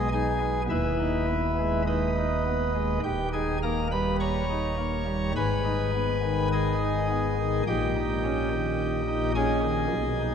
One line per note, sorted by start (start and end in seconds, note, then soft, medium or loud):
0.00 0.67 B1 medium
0.00 0.67 B2 medium
0.12 0.38 D#4 medium
0.12 0.62 G#4 medium
0.12 0.62 G#5 loud
0.41 0.66 B3 medium
0.69 2.98 D#1 medium
0.69 2.98 D#2 medium
0.69 1.82 E4 medium
0.69 1.82 B4 medium
0.69 1.82 E5 medium
1.00 1.25 D#4 soft
1.29 1.54 B3 medium
1.59 2.09 G#3 soft
1.87 2.15 D#4 medium
1.87 3.00 B4 soft
1.87 3.00 D#5 medium
2.17 2.42 D#4 medium
2.46 2.71 B3 medium
2.75 2.99 G#3 soft
3.03 5.32 D#1 medium
3.03 5.32 D#2 medium
3.03 3.28 G4 medium
3.03 3.28 G5 medium
3.33 3.59 D#4 soft
3.33 3.57 G#4 medium
3.33 3.58 G#5 medium
3.63 3.89 A#3 medium
3.63 3.87 A#4 medium
3.63 3.87 A#5 medium
3.91 4.43 G3 soft
3.91 4.16 B4 medium
3.91 4.16 B5 medium
4.20 5.33 C#5 medium
4.20 5.33 A#5 medium
4.20 5.32 C#6 medium
4.50 4.75 D#4 medium
4.78 5.04 A#3 medium
5.06 5.31 G3 soft
5.36 7.62 G#1 medium
5.36 7.61 G#2 medium
5.36 6.48 B4 medium
5.36 6.48 G#5 medium
5.36 6.48 B5 medium
5.65 5.90 D#4 medium
5.95 6.20 B3 medium
6.23 6.74 D#3 medium
6.53 7.63 G#4 medium
6.53 7.63 D#5 medium
6.53 7.63 G#5 loud
6.82 7.07 D#4 medium
7.10 7.35 B3 medium
7.40 7.63 D#3 medium
7.67 9.87 A#1 medium
7.67 9.87 A#2 medium
7.67 9.32 G4 medium
7.67 9.31 D#5 medium
7.67 9.31 G5 loud
7.95 8.20 D#4 medium
8.24 8.48 C#4 medium
8.52 9.01 D#3 medium
9.08 9.32 D#4 medium
9.35 9.60 C#4 medium
9.35 10.35 G#4 medium
9.35 10.35 D#5 medium
9.35 10.35 G#5 loud
9.64 9.87 D#3 medium
9.91 10.35 B1 medium
9.91 10.35 B2 medium
10.20 10.35 D#4 medium